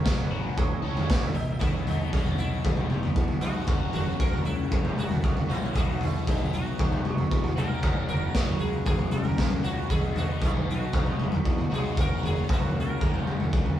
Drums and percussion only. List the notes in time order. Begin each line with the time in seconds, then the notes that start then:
0.06 kick, snare
0.19 floor tom
0.57 kick, floor tom
0.97 floor tom
1.10 kick, snare, mid tom
1.23 floor tom
1.61 kick, floor tom
1.87 floor tom
2.13 kick
2.26 floor tom
2.64 kick, floor tom
2.77 mid tom
2.90 mid tom
3.03 floor tom
3.16 kick
3.28 floor tom
3.41 mid tom
3.67 kick, floor tom
3.93 floor tom
4.20 kick
4.33 floor tom
4.72 kick, floor tom
4.85 mid tom
4.98 mid tom
5.11 floor tom
5.24 kick
5.37 floor tom
5.50 mid tom
5.75 kick, floor tom
6.01 floor tom
6.27 kick
6.40 floor tom
6.79 kick, floor tom
6.92 mid tom
7.05 mid tom
7.18 floor tom
7.31 kick
7.44 floor tom
7.57 mid tom
7.83 kick, floor tom
8.09 floor tom
8.35 kick, snare
8.46 floor tom
8.86 kick, floor tom
8.99 mid tom
9.12 mid tom
9.25 floor tom
9.38 kick, snare, mid tom
9.51 floor tom
9.90 kick, floor tom
10.16 floor tom
10.42 kick
10.54 floor tom
10.93 kick, floor tom
11.06 mid tom
11.19 mid tom
11.32 floor tom
11.45 kick
11.58 floor tom
11.72 mid tom
11.97 kick, floor tom
12.23 floor tom
12.49 kick
12.62 floor tom
13.01 kick, floor tom
13.14 mid tom
13.27 mid tom
13.40 floor tom
13.53 kick
13.66 floor tom